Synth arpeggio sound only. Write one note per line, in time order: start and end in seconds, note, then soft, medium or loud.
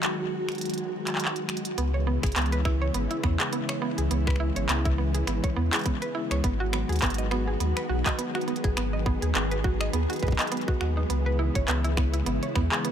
1.78 1.85 B3 medium
1.94 2.00 C#5 medium
2.07 2.19 B3 medium
2.23 2.35 G#4 medium
2.36 2.48 B3 medium
2.52 2.62 B4 loud
2.65 2.77 E4 loud
2.82 2.87 C#5 loud
2.94 3.07 B3 medium
3.11 3.16 E4 medium
3.24 3.36 B3 medium
3.40 3.46 G#4 medium
3.53 3.60 B3 medium
3.69 3.75 C#5 medium
3.82 3.94 B3 loud
3.98 4.10 G#4 medium
4.11 4.23 B3 medium
4.27 4.37 B4 loud
4.40 4.52 E4 loud
4.56 4.62 C#5 loud
4.69 4.81 B3 medium
4.85 4.91 E4 loud
4.98 5.10 B3 medium
5.15 5.20 G#4 medium
5.27 5.35 B3 medium
5.44 5.49 C#5 medium
5.56 5.69 B3 medium
5.73 5.85 G#4 medium
5.86 5.98 B3 medium
6.02 6.11 B4 medium
6.15 6.27 E4 loud
6.31 6.37 C#5 loud
6.44 6.56 B3 medium
6.60 6.66 F#4 loud
6.73 6.85 B3 medium
6.89 6.95 G#4 medium
7.02 7.09 B3 medium
7.18 7.24 D#5 medium
7.31 7.43 B3 loud
7.48 7.60 G#4 medium
7.60 7.72 B3 medium
7.77 7.86 B4 loud
7.89 8.02 F#4 loud
8.06 8.12 D#5 loud
8.19 8.31 B3 medium
8.35 8.41 F#4 loud
8.48 8.60 B3 medium
8.64 8.70 G#4 medium
8.77 8.84 B3 medium
8.93 8.99 D#5 medium
9.06 9.18 B3 loud
9.22 9.35 G#4 medium
9.35 9.47 B3 medium
9.51 9.61 B4 loud
9.64 9.76 F#4 loud
9.81 9.86 D#5 loud
9.93 10.05 B3 medium
10.10 10.15 F#4 loud
10.23 10.35 B4 medium
10.39 10.45 D#5 loud
10.52 10.59 B3 medium
10.68 10.80 F#4 medium
10.81 10.88 F#4 medium
10.97 11.07 D#4 medium
11.10 11.22 B3 medium
11.26 11.36 B4 loud
11.39 11.51 E4 medium
11.55 11.61 C#5 loud
11.68 11.80 B3 medium
11.84 11.90 E4 loud
11.97 12.09 B3 medium
12.14 12.26 E4 medium
12.26 12.34 B3 medium
12.43 12.48 C#5 medium
12.55 12.68 B3 loud
12.72 12.84 G#4 medium
12.85 12.92 B3 medium